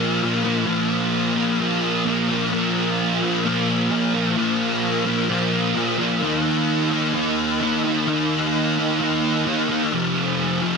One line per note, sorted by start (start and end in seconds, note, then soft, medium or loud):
0.00 0.21 A#2 medium
0.00 0.22 F3 medium
0.00 0.23 A#3 loud
0.22 0.65 A#2 medium
0.22 0.45 F3 medium
0.22 0.43 A#3 medium
0.44 0.66 F3 medium
0.44 0.67 A#3 medium
0.66 1.59 A#2 medium
0.66 1.37 F3 loud
0.66 1.35 A#3 medium
1.35 1.60 F3 medium
1.35 1.61 A#3 medium
1.60 2.04 A#2 medium
1.60 2.05 F3 loud
1.60 2.07 A#3 medium
2.05 2.50 A#2 medium
2.05 2.30 F3 medium
2.05 2.28 A#3 medium
2.28 2.51 F3 medium
2.28 2.52 A#3 medium
2.51 3.44 A#2 medium
2.51 3.23 F3 medium
2.51 3.22 A#3 medium
3.22 3.45 F3 medium
3.22 3.47 A#3 medium
3.45 3.89 A#2 medium
3.45 3.90 F3 medium
3.45 3.91 A#3 loud
3.90 4.35 A#2 medium
3.90 4.14 F3 medium
3.90 4.13 A#3 medium
4.14 4.36 F3 medium
4.14 4.38 A#3 medium
4.37 5.28 A#2 medium
4.37 5.07 F3 loud
4.37 5.05 A#3 loud
5.05 5.28 F3 medium
5.05 5.31 A#3 medium
5.29 5.74 A#2 medium
5.29 5.75 F3 loud
5.29 5.77 A#3 medium
5.75 6.21 A#2 medium
5.75 5.99 F3 medium
5.75 5.97 A#3 medium
5.98 6.21 F3 medium
5.98 6.23 A#3 medium
6.22 7.13 D#3 medium
6.22 6.92 A#3 medium
6.22 6.90 D#4 medium
6.91 7.14 A#3 medium
6.91 7.15 D#4 medium
7.13 7.59 D#3 medium
7.13 7.60 A#3 loud
7.13 7.62 D#4 loud
7.61 8.06 D#3 medium
7.61 7.86 A#3 medium
7.61 7.84 D#4 medium
7.84 8.07 A#3 medium
7.84 8.09 D#4 medium
8.07 8.98 D#3 medium
8.07 8.78 A#3 medium
8.07 8.77 D#4 loud
8.77 8.98 A#3 medium
8.77 9.00 D#4 medium
8.99 9.44 D#3 medium
8.99 9.44 A#3 medium
8.99 9.46 D#4 loud
9.45 9.90 D#3 medium
9.45 9.70 A#3 medium
9.45 9.68 D#4 medium
9.69 9.92 A#3 medium
9.69 9.95 D#4 medium
9.92 10.77 F2 medium
9.92 10.62 C3 medium
9.92 10.61 F3 loud
10.61 10.77 C3 medium
10.61 10.77 F3 medium